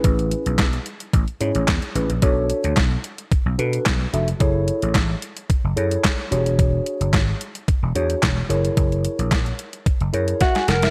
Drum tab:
HH |xxxxxxxxxxxxxxxx|x-xxx-xxx-xxx-xx|x-xxx-xxx-xxx-xx|x-xxx-xxx-xxx-xx|
CP |----x-------x---|----x-------x---|----x-------x---|----x-------x---|
SD |----o-------o---|----o-------o---|----o-------o---|----o-------o---|
BD |o---o---o---o---|o---o---o---o---|o---o---o---o---|o---o---o---o---|

HH |xxxxxxxxxxxxxxxx|
CP |----x-----------|
SD |----o-------oooo|
BD |o---o---o---o---|